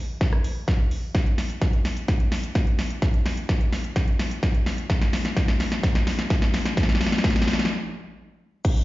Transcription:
0.21 kick, snare
0.33 cross-stick
0.44 open hi-hat
0.68 kick, snare
0.91 open hi-hat
1.15 kick, snare, closed hi-hat
1.26 closed hi-hat
1.38 snare, open hi-hat
1.50 closed hi-hat
1.62 kick, snare, closed hi-hat
1.73 closed hi-hat
1.85 snare, open hi-hat
1.97 closed hi-hat
2.08 kick, snare, closed hi-hat
2.20 closed hi-hat
2.32 snare, open hi-hat
2.44 closed hi-hat
2.55 kick, snare, closed hi-hat
2.67 closed hi-hat
2.79 snare, open hi-hat
2.90 closed hi-hat
3.02 kick, snare, closed hi-hat
3.14 closed hi-hat
3.26 snare, open hi-hat
3.37 closed hi-hat
3.49 kick, snare, closed hi-hat
3.61 closed hi-hat
3.73 snare, open hi-hat
3.84 closed hi-hat
3.96 kick, snare, closed hi-hat
4.08 closed hi-hat
4.19 snare, open hi-hat
4.31 closed hi-hat
4.43 kick, snare, closed hi-hat
4.55 closed hi-hat
4.66 snare, open hi-hat
4.78 closed hi-hat
4.90 kick, snare, closed hi-hat
5.01 snare, closed hi-hat
5.13 snare, open hi-hat
5.25 snare, closed hi-hat
5.37 kick, snare, closed hi-hat
5.48 snare, closed hi-hat
5.60 snare, open hi-hat
5.72 snare, closed hi-hat
5.83 kick, snare, closed hi-hat
5.95 snare, closed hi-hat
6.07 snare, open hi-hat
6.19 snare, closed hi-hat
6.30 kick, snare, closed hi-hat
6.42 snare, closed hi-hat
6.54 snare, open hi-hat
6.65 snare, closed hi-hat
6.77 kick, snare, closed hi-hat
6.83 snare
6.89 snare, closed hi-hat
6.95 snare
7.01 snare, open hi-hat
7.07 snare
7.12 snare, closed hi-hat
7.18 snare
7.24 kick, snare, closed hi-hat
7.30 snare
7.36 snare, closed hi-hat
7.42 snare
7.47 snare, open hi-hat
7.53 snare
7.59 snare, closed hi-hat
7.65 snare
8.65 kick, closed hi-hat, crash, cabasa
8.76 closed hi-hat, cabasa

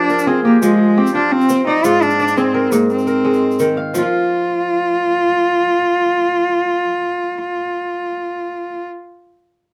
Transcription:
Already playing: F3 D4 F4 G4 D5
0.09 A#4, shaker
0.19 shaker
0.27 C4 F4 G#4
0.44 A#3 G4
0.62 F3 G#3, shaker
0.97 C4 G4
1.07 shaker
1.14 D4 F4
1.31 C4
1.41 shaker
1.49 C4, shaker
1.66 D#4 D5
1.84 G#2 F4, shaker
2.02 D4 F5, shaker
2.10 shaker
2.19 D5, shaker
2.28 shaker
2.37 C4 G#4, shaker
2.54 A#4
2.72 G#2 A#3, shaker
2.90 C4, shaker
2.98 shaker
3.07 A#4, shaker
3.25 G#3
3.34 shaker
3.51 shaker
3.59 D#3, shaker
3.77 F5
3.94 F3 F4, shaker
3.98 F4 F5

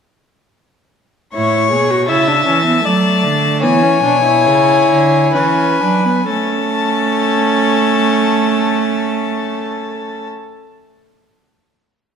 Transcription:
1.34 A2 E4 C#5 C#6
1.71 B2 G#4
1.90 F#4
2.09 C#3 E4 E5 A5
2.28 D4
2.47 E3 C#4
2.65 B3
2.85 F#3 A3 D5
3.23 D3
3.63 E3 B3 C#5 G#5
3.83 C#4
4.03 B2 D4
4.24 E4
4.46 C#3
4.89 D3
5.34 E3 C#4 B4 G#5
5.81 F#3 D4
6.05 B3
6.29 A3 C#4 A4 A5

